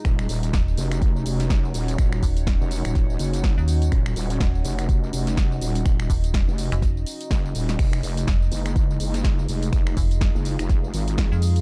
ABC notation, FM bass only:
X:1
M:4/4
L:1/16
Q:"Swing 16ths" 1/4=124
K:Ebdor
V:1 name="FM bass" clef=bass
z4 E,,,2 z8 z2 | z2 E,,,3 z8 E,,3 | z4 E,,,2 z8 z2 | z2 E,,,3 z2 F,,,3 z6 |
z4 F,,,2 z8 z2 | z2 F,,,3 z8 F,,3 |]